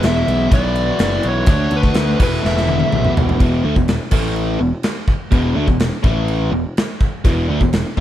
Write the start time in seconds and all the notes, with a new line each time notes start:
Already playing: E2 B2 E3 G#3 B3 E4
0.03 E1 E5, snare, ride
0.28 B1, ride
0.51 B1 B2 E3 B3 E4 F#4 D5, kick, ride
0.75 ride
0.99 F#1, snare, ride
1.23 B1, ride
1.28 C#5
1.46 D2 D3 A3 D4, kick, ride
1.50 F#4
1.71 D2, ride
1.76 B4
1.83 kick
1.94 D2, snare, ride
2.19 E1 E2 B2 E3 A3 B3 E4 B4, kick, crash
2.44 E1 E5, snare
2.57 snare
2.67 high tom
2.80 high tom
2.92 B1, mid tom
3.05 mid tom
3.17 E1, floor tom
3.29 floor tom
3.39 E1 E2 B2 E3, kick, crash
3.64 D2 D3 A3
3.76 E1 E2 B2, kick
3.88 snare, crash
4.11 A1 A2 E3 A3, kick, crash
4.36 crash
4.59 E1 E2 B2
4.83 snare, crash
5.08 kick
5.32 E1 E2 B2 E3, kick, crash
5.55 D2 D3 A3
5.68 E1 E2 B2, kick
5.80 snare, crash
6.03 A1 A2 E3 A3, kick
6.28 crash
6.51 E1 E2 B2
6.77 snare, crash
7.01 kick
7.24 E1 E2 B2 E3, kick, crash
7.49 D2 D3 A3
7.61 E1 E2 B2, kick
7.73 snare, crash
7.97 A2, kick